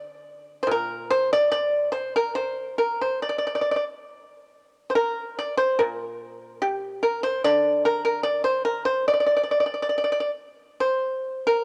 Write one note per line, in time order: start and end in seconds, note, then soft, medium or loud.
0.00 1.51 D3 soft
0.63 0.69 C5 medium
0.67 3.22 A#2 medium
0.71 1.08 A#4 medium
1.10 1.30 C5 medium
1.33 1.50 D5 medium
1.52 1.91 D5 medium
1.92 2.13 C5 medium
2.16 2.35 A#4 medium
2.35 2.76 C5 medium
2.78 2.99 A#4 medium
3.01 3.22 C5 medium
3.22 3.28 D5 medium
3.29 3.37 D5 soft
3.38 3.45 D5 medium
3.47 3.53 D5 soft
3.55 3.60 D5 medium
3.61 3.68 D5 soft
3.71 3.75 D5 soft
3.76 3.83 D5 soft
4.90 4.95 C5 medium
4.95 5.37 A#4 medium
5.39 5.57 D5 medium
5.57 5.79 C5 medium
5.79 7.46 A#2 medium
5.79 6.59 A#4 medium
6.62 7.02 G4 medium
7.03 7.23 A#4 medium
7.23 7.44 C5 medium
7.44 9.97 D3 medium
7.44 7.84 D5 medium
7.85 8.04 A#4 medium
8.05 8.23 A#4 medium
8.23 8.44 D5 medium
8.44 8.64 C5 medium
8.65 8.85 A#4 medium
8.85 9.07 C5 medium
9.08 9.12 D5 medium
9.14 9.19 D5 soft
9.20 9.25 D5 soft
9.27 9.35 D5 medium
9.37 9.42 D5 medium
9.43 9.50 D5 soft
9.51 9.59 D5 soft
9.60 9.65 D5 soft
9.66 9.73 D5 soft
9.74 9.81 D5 soft
9.82 9.88 D5 soft
9.89 9.97 D5 soft
9.98 10.03 D5 medium
10.04 10.11 D5 soft
10.12 10.19 D5 medium
10.20 10.30 D5 soft
10.80 11.43 C5 medium
11.47 11.64 A#4 medium